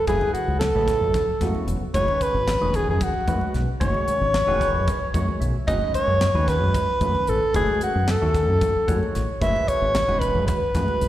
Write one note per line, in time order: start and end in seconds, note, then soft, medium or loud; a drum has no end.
0.07 0.18 F#1 medium
0.07 0.59 C#3 medium
0.07 0.59 F#3 medium
0.07 0.59 B3 medium
0.07 0.59 E4 medium
0.07 0.32 G#4 medium
0.07 0.59 B4 medium
0.07 kick medium
0.07 closed hi-hat medium
0.07 high conga loud
0.21 low conga medium
0.33 0.59 F#4 medium
0.33 muted fingered electric bass stroke soft
0.33 closed hi-hat medium
0.48 0.69 C#2 medium
0.48 low conga soft
0.60 1.63 A4 medium
0.60 snare loud
0.60 closed hi-hat medium
0.60 low conga loud
0.74 1.03 A1 medium
0.74 1.25 C#3 medium
0.74 1.25 F#3 medium
0.74 1.25 B3 medium
0.74 1.26 E4 medium
0.74 1.26 A4 medium
0.74 high conga medium
0.88 kick medium
0.88 snare soft
0.88 closed hi-hat medium
0.88 low conga soft
1.01 1.12 F#2 medium
1.14 kick medium
1.14 snare soft
1.14 closed hi-hat medium
1.14 low conga loud
1.27 muted fingered electric bass stroke soft
1.41 1.52 F#2 medium
1.41 1.82 C#3 medium
1.41 1.82 F#3 medium
1.41 1.82 B3 medium
1.41 1.82 E4 medium
1.41 1.82 F#4 medium
1.41 kick medium
1.41 snare soft
1.41 closed hi-hat medium
1.41 high conga loud
1.55 low conga medium
1.67 1.78 E1 medium
1.67 closed hi-hat medium
1.80 muted fingered electric bass stroke soft
1.94 2.05 F#1 loud
1.94 2.45 D#3 medium
1.94 2.45 G#3 medium
1.94 2.45 C#4 medium
1.94 2.46 F#4 medium
1.94 2.46 B4 medium
1.94 2.24 C#5 medium
1.94 kick loud
1.94 closed hi-hat medium
1.94 high conga medium
2.08 low conga medium
2.21 2.77 B4 loud
2.21 muted fingered electric bass stroke soft
2.21 kick medium
2.21 closed hi-hat medium
2.34 2.55 G#1 medium
2.34 low conga soft
2.48 snare medium
2.48 closed hi-hat medium
2.48 low conga medium
2.61 2.89 E1 medium
2.61 3.12 D#3 medium
2.61 3.12 G#3 medium
2.61 3.12 C#4 medium
2.61 3.12 F#4 medium
2.61 3.12 G#4 medium
2.61 high conga medium
2.74 2.88 G#4 medium
2.74 kick medium
2.74 closed hi-hat medium
2.74 low conga soft
2.88 2.98 F#2 medium
2.88 3.04 G#4 medium
3.01 3.55 F#4 medium
3.01 kick loud
3.01 closed hi-hat medium
3.01 low conga medium
3.14 muted fingered electric bass stroke soft
3.28 3.38 F#2 medium
3.28 3.68 D#3 medium
3.28 3.68 G#3 medium
3.28 3.69 C#4 medium
3.28 3.68 F#4 medium
3.28 3.68 B4 medium
3.28 kick medium
3.28 closed hi-hat medium
3.28 high conga medium
3.41 low conga medium
3.54 3.65 B1 medium
3.54 snare soft
3.54 closed hi-hat medium
3.68 muted fingered electric bass stroke soft
3.80 3.92 F#1 medium
3.80 4.31 D#3 medium
3.80 4.31 G#3 medium
3.80 4.31 C#4 medium
3.80 4.31 F#4 medium
3.80 4.31 C#5 medium
3.80 5.37 C#5 loud
3.80 kick medium
3.80 closed hi-hat medium
3.80 high conga medium
3.80 low conga soft
3.94 low conga medium
4.08 muted fingered electric bass stroke soft
4.08 closed hi-hat medium
4.08 low conga soft
4.21 4.42 G#1 medium
4.21 low conga soft
4.34 snare loud
4.34 closed hi-hat medium
4.34 low conga medium
4.47 4.74 E1 medium
4.47 4.98 D#3 loud
4.47 4.98 G#3 medium
4.47 4.98 C#4 medium
4.47 4.98 F#4 medium
4.47 4.98 B4 loud
4.47 high conga medium
4.47 low conga soft
4.61 kick medium
4.61 snare soft
4.61 closed hi-hat medium
4.61 low conga soft
4.73 4.84 F#2 medium
4.88 kick loud
4.88 closed hi-hat medium
4.88 low conga medium
5.00 muted fingered electric bass stroke soft
5.00 low conga soft
5.14 5.25 F#2 medium
5.14 5.55 D#3 medium
5.14 5.55 G#3 medium
5.14 5.55 C#4 medium
5.14 5.55 F#4 medium
5.14 5.55 C#5 medium
5.14 5.39 F#5 medium
5.14 kick medium
5.14 closed hi-hat medium
5.14 high conga medium
5.14 low conga soft
5.28 low conga medium
5.40 5.52 B1 medium
5.40 5.66 E5 medium
5.40 closed hi-hat medium
5.54 muted fingered electric bass stroke soft
5.67 5.78 F#1 medium
5.67 6.18 D#3 medium
5.67 6.19 G#3 medium
5.67 6.19 C#4 medium
5.67 6.19 F#4 medium
5.67 6.18 B4 medium
5.67 5.92 D#5 loud
5.67 kick loud
5.67 closed hi-hat medium
5.67 high conga medium
5.82 low conga medium
5.94 6.50 C#5 loud
5.94 muted fingered electric bass stroke soft
5.94 kick medium
5.94 closed hi-hat medium
6.08 6.29 F#2 medium
6.08 low conga soft
6.21 snare loud
6.21 closed hi-hat medium
6.21 low conga medium
6.34 6.61 D#2 medium
6.34 6.85 D#3 medium
6.34 6.85 G#3 medium
6.34 6.85 C#4 medium
6.34 6.85 F#4 medium
6.34 6.86 B4 medium
6.34 high conga medium
6.48 7.30 B4 medium
6.48 kick medium
6.48 snare soft
6.48 closed hi-hat medium
6.61 6.72 F#2 medium
6.74 kick loud
6.74 closed hi-hat medium
6.74 low conga medium
6.88 muted fingered electric bass stroke soft
7.01 7.12 F#2 medium
7.01 7.42 D#3 medium
7.01 7.42 G#3 medium
7.01 7.42 C#4 medium
7.01 7.42 F#4 medium
7.01 7.42 B4 medium
7.01 kick medium
7.01 closed hi-hat medium
7.01 high conga medium
7.15 low conga medium
7.27 7.39 A1 medium
7.27 7.55 A4 medium
7.27 closed hi-hat medium
7.54 7.65 F#1 medium
7.54 8.05 D#3 medium
7.54 8.05 G#3 medium
7.54 8.05 C#4 medium
7.54 8.06 F#4 medium
7.54 7.80 G#4 medium
7.54 8.06 B4 medium
7.54 kick loud
7.54 closed hi-hat medium
7.54 high conga loud
7.68 low conga medium
7.81 8.12 F#4 medium
7.81 muted fingered electric bass stroke soft
7.81 closed hi-hat medium
7.96 8.16 F#2 medium
7.96 low conga soft
8.08 9.16 A4 medium
8.08 snare loud
8.08 closed hi-hat medium
8.08 low conga medium
8.21 8.49 D#2 medium
8.21 8.72 D#3 medium
8.21 8.72 A3 medium
8.21 8.72 C#4 medium
8.21 8.72 F#4 medium
8.21 8.72 A4 medium
8.21 high conga medium
8.34 kick medium
8.34 snare soft
8.34 closed hi-hat medium
8.34 low conga soft
8.49 8.59 F#2 medium
8.61 kick loud
8.61 closed hi-hat medium
8.61 low conga medium
8.76 muted fingered electric bass stroke soft
8.88 8.99 F#2 medium
8.88 9.29 D#3 medium
8.88 9.28 G#3 medium
8.88 9.29 C#4 medium
8.88 9.29 F#4 medium
8.88 9.14 C#5 medium
8.88 9.13 F#5 medium
8.88 kick medium
8.88 closed hi-hat medium
8.88 high conga medium
9.03 low conga medium
9.15 9.26 A1 medium
9.15 9.40 C#5 medium
9.15 snare soft
9.15 closed hi-hat medium
9.41 9.52 F#1 medium
9.41 9.92 D#3 medium
9.41 9.92 G#3 medium
9.41 9.92 C#4 medium
9.41 9.92 F#4 medium
9.41 9.92 B4 medium
9.41 9.70 E5 loud
9.41 kick medium
9.41 closed hi-hat medium
9.41 high conga medium
9.56 low conga medium
9.68 10.21 C#5 medium
9.68 muted fingered electric bass stroke soft
9.68 kick medium
9.68 closed hi-hat medium
9.82 10.03 G#1 medium
9.82 low conga soft
9.95 snare loud
9.95 closed hi-hat medium
9.95 low conga medium
10.08 10.36 E1 medium
10.08 10.59 D#3 medium
10.08 10.59 G#3 medium
10.08 10.59 C#4 medium
10.08 10.59 F#4 medium
10.08 10.59 B4 medium
10.08 high conga medium
10.20 10.46 B4 medium
10.20 kick medium
10.20 closed hi-hat medium
10.20 low conga soft
10.35 10.45 F#2 medium
10.47 11.08 B4 loud
10.47 kick medium
10.47 closed hi-hat medium
10.47 low conga loud
10.62 muted fingered electric bass stroke soft
10.75 10.85 F#2 medium
10.75 11.08 D#3 medium
10.75 11.08 G#3 medium
10.75 11.08 C#4 medium
10.75 11.08 F#4 medium
10.75 11.08 B4 medium
10.75 kick medium
10.75 snare soft
10.75 closed hi-hat medium
10.75 high conga medium
10.88 low conga medium
11.01 11.08 B1 medium
11.01 closed hi-hat medium